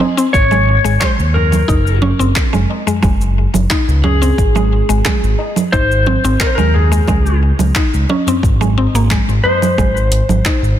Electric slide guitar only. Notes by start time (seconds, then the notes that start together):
Already playing: G#4
0.33 C#5
1.00 C5
1.34 A#4
4.04 G#4
5.72 C5
6.40 A#4
6.47 C5
6.55 A#4
6.74 G#4
9.44 C5